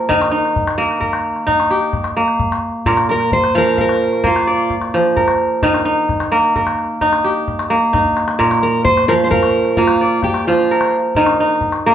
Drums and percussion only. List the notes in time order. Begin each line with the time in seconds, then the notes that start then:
0.11 calabash thump
0.22 calabash click
0.45 calabash click
0.56 calabash thump
0.67 calabash click
0.91 calabash click
1.02 calabash thump
1.13 calabash click
1.36 calabash click
1.48 calabash thump
1.60 calabash click
1.93 calabash thump, calabash click
2.04 calabash click
2.28 calabash click
2.40 calabash thump
2.52 calabash click
2.86 calabash thump
2.97 calabash click
3.20 calabash click
3.32 calabash thump
3.44 calabash click
3.67 calabash click
3.78 calabash thump
3.89 calabash click
4.13 calabash click
4.24 calabash thump
4.36 calabash click
4.70 calabash thump, calabash click
4.81 calabash click
5.05 calabash click
5.17 calabash thump
5.28 calabash click
5.62 calabash thump, calabash click
5.74 calabash click
5.86 calabash click
6.09 calabash thump, calabash click
6.20 calabash click
6.32 calabash click
6.44 calabash click
6.56 calabash thump, calabash click
6.67 calabash click
6.79 calabash click
7.01 calabash thump, calabash click
7.13 calabash click
7.25 calabash click
7.48 calabash thump
7.59 calabash click
7.94 calabash thump, calabash click
8.05 calabash thump
8.17 calabash click
8.28 calabash click
8.40 calabash thump
8.51 calabash click
8.85 calabash thump
8.97 calabash click
9.20 calabash click
9.32 calabash thump
9.43 calabash click
9.65 calabash click
9.77 calabash thump
9.88 calabash click
10.23 calabash thump, calabash click
10.34 calabash click
10.58 calabash click
10.81 calabash click
11.15 calabash thump
11.26 calabash click
11.49 calabash click
11.61 calabash thump
11.72 calabash click